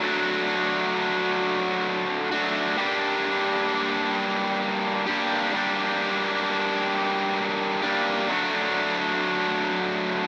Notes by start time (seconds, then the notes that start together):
0.01 F#3 A3 D4 F#4
2.31 F#3 A3 D4 F#4
2.77 G3 A#3 D4 G4
5.07 G3 A#3 D4 G4
5.53 G3 A#3 D4 G4
7.82 G3 A#3 D4 G4
8.29 F#3 A3 D4 F#4